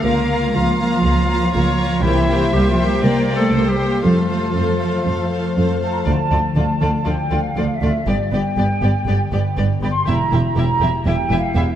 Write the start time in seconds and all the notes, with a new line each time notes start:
Already playing: F4 F5
0.04 C#2 C#3 A#3 F4 A#4 F5 A#5
0.29 A#3 F4 F5 A#5
0.37 F4
0.54 C#2 F3 A#3 F4 F5 A#5
0.70 C#4
0.79 A#3 F4 F5 A#5
1.04 C#2 C#3 A#3 F4 F5 A#5
1.20 C#4
1.28 A#3 F4 F5 A#5
1.38 F4
1.53 C#2 A#3 F4 C#5 F5 A#5
1.71 C#4
1.79 A#3 F4 F5 A#5
2.03 C2 C3 E3 A#3 E4 G4 C5 E5 G5
2.21 G3
2.28 A#3 G4 C5 G5
2.38 G4
2.53 C2 G3 A#3 C4 G4 C5 G5
2.69 F3 G3 F4
2.79 A#3 G4 C5 G5
2.86 G3 G4
3.03 C2 C3 A#3 G4 A#4 C5 D5 G5
3.21 G3
3.29 A#3 G4 C5 G5
3.36 A3 G4 A4
3.53 C2 A#3 G4 C5 G5
3.69 G3 G4
3.78 A#3 G4 C5 G5
3.89 A#3
4.02 F2 F3 A3 F4 A4 C5 F5
4.22 A3
4.29 A3 A4 C5 F5
4.39 C5
4.55 F2 A3 F4 A4 C5 F5
4.73 A3
4.80 A3 A4 C5 F5
4.89 F4
5.05 F2 F3 A3 A4 C5 F5
5.23 A3
5.31 A3 A4 C5 F5
5.39 C5
5.56 F2 A3 F4 A4 C5 F5
5.73 A3
5.82 A3 A4 C5 F5 A5
5.89 F4 A#5
6.06 D2 D3 A3 F4 D5 A5
6.30 D2 D3 A3 F4 D5
6.55 D2 D3 A3 F4 D5 A5
6.81 D2 D3 A3 F4 D5
7.05 D2 D3 A3 D4 F4 D5 G5
7.31 D2 D3 A3 F4 D5
7.41 F5
7.56 D2 D3 A3 F4 D5
7.74 E5
7.81 D2 D3 A3 F4 D5
8.07 G1 G2 B3 G4 D5
8.32 G1 G2 B3 G4 D5 G5
8.57 G1 G2 B3 G4 D5
8.82 G1 G2 B3 G4 D5
9.07 G1 G2 D3 B3 G4 D5
9.32 G1 G2 B3 G4 D5
9.57 G1 G2 B3 G4 D5
9.82 G1 G2 B3 G4 D5 B5
9.91 C6
10.06 E1 E2 E4 G4 E5 A#5
10.32 E1 E2 E4 G4 E5
10.56 E1 E2 E4 G4 E5 G5 A#5
10.81 E1 E2 E4 G4 E5
11.06 E1 E2 E3 E4 G4 E5 G5
11.30 E1 E2 E4 G4 E5
11.38 F5
11.55 E1 E2 E4 G4 E5
11.72 E5